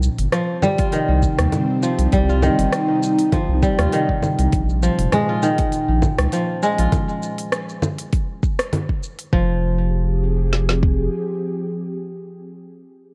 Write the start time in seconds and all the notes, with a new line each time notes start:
Already playing: C3 G3 C4
0.03 shaker
0.18 G1, open hi-hat, shaker
0.32 F3, cross-stick, open hi-hat, shaker
0.62 G3, low conga, shaker
0.78 F4, kick, open hi-hat, shaker
0.91 D#3 D#4, open hi-hat, shaker
1.09 C2
1.23 kick, shaker
1.39 D#2, cross-stick, open hi-hat, shaker
1.52 open hi-hat, low conga, shaker
1.83 F3, shaker
1.99 C2, open hi-hat, shaker
2.12 C2 G3, kick, open hi-hat, shaker
2.29 F4, shaker
2.42 D#3, low conga, shaker
2.59 G1, open hi-hat, shaker
2.73 cross-stick, open hi-hat, shaker
3.03 shaker
3.19 open hi-hat, shaker
3.32 F3, kick, open hi-hat, low conga, shaker
3.49 C2
3.63 G3, kick, shaker
3.79 D#2 F4, cross-stick, open hi-hat, shaker
3.92 D#3, open hi-hat, shaker
4.09 kick
4.22 low conga, shaker
4.39 C2, open hi-hat, shaker
4.52 A#1 A#2, kick, open hi-hat, shaker
4.69 shaker
4.83 F3, shaker
4.99 F1, open hi-hat, shaker
5.12 F3 G#3, cross-stick, open hi-hat, low conga, shaker
5.29 F4
5.43 D#3, shaker
5.58 kick, open hi-hat, shaker
5.72 open hi-hat, shaker
5.89 A#1
6.02 kick, low conga, shaker
6.19 C#2, cross-stick, open hi-hat, shaker
6.32 F3, open hi-hat, shaker
6.63 G#3, shaker
6.79 A#1 F4, open hi-hat, shaker
6.92 kick, open hi-hat, low conga, shaker
7.09 shaker
7.23 shaker
7.38 open hi-hat, shaker
7.52 cross-stick, open hi-hat, shaker
7.69 shaker
7.82 low conga, shaker
7.98 open hi-hat, shaker
8.12 kick, open hi-hat, shaker
8.43 kick, shaker
8.59 cross-stick, open hi-hat, shaker
8.72 open hi-hat, low conga, shaker
8.89 kick
9.03 shaker
9.19 open hi-hat, shaker
9.33 F1 F3, kick
9.43 C4
9.52 G4
9.60 G#4
10.53 snare
10.69 snare
10.83 kick